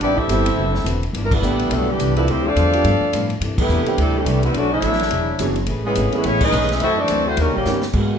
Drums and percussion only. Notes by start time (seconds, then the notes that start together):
0.01 ride
0.18 kick
0.29 hi-hat pedal, ride
0.46 ride
0.75 snare
0.86 hi-hat pedal, ride
1.03 ride
1.14 ride
1.31 kick, crash
1.43 hi-hat pedal
1.59 ride
1.71 ride
2.00 hi-hat pedal, ride
2.16 ride
2.28 ride
2.56 hi-hat pedal, ride
2.73 ride
2.84 ride
3.13 hi-hat pedal, ride
3.30 ride
3.41 ride
3.58 kick, crash
3.69 hi-hat pedal
3.86 ride
3.98 ride
4.26 hi-hat pedal, ride
4.43 ride
4.54 ride
4.82 hi-hat pedal, ride
4.93 snare
4.99 snare, ride
5.11 ride
5.39 hi-hat pedal, ride
5.56 ride
5.66 ride
5.95 hi-hat pedal, ride
6.12 ride
6.24 ride
6.41 kick, crash
6.52 hi-hat pedal
6.61 snare
6.69 snare, ride
6.80 ride
7.08 hi-hat pedal, ride
7.37 ride
7.65 snare, hi-hat pedal
7.82 snare
7.93 kick, crash